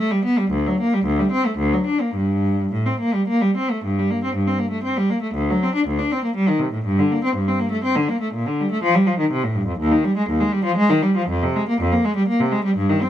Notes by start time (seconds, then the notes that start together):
0.00 A3
0.11 G3
0.25 B3
0.38 G3
0.51 D2
0.67 F#3
0.80 A#3
0.93 G3
1.05 D2
1.19 G3
1.31 C4
1.46 A3
1.58 D2
1.73 F#3
1.86 D4
2.01 A#3
2.15 G2
2.72 A2
2.86 C4
3.00 A#3
3.14 G3
3.28 A#3
3.42 G3
3.57 C4
3.71 A3
3.84 G2
3.99 G3
4.11 A#3
4.24 C4
4.35 G2
4.47 C4
4.59 A#3
4.71 A3
4.83 C4
4.97 G3
5.10 A#3
5.22 A3
5.34 D2
5.50 F#3
5.63 C4
5.75 D4
5.87 D2
5.99 D4
6.12 C4
6.24 A#3
6.36 G3
6.48 D#3
6.59 C3
6.73 A2
6.85 G2
6.99 D3
7.11 A#3
7.24 C4
7.35 G2
7.48 C4
7.60 A#3
7.71 A3
7.84 C4
7.96 D3
8.08 A#3
8.21 A3
8.34 A#2
8.47 D3
8.60 G3
8.71 A3
8.83 F3
8.95 G3
9.07 F3
9.19 D#3
9.31 C3
9.43 A2
9.55 G2
9.67 F2
9.79 D#2
9.91 D#3
10.04 G3
10.17 G#3
10.29 D#2
10.40 G#3
10.52 G3
10.64 F3
10.77 G#3
10.90 D#3
11.02 G3
11.17 F3
11.29 F2
11.43 C3
11.56 G#3
11.69 A#3
11.81 F2
11.92 A#3
12.05 G#3
12.16 G3
12.28 A#3
12.40 C3
12.52 G#3
12.65 G3
12.77 G2
12.89 D#3
13.02 C4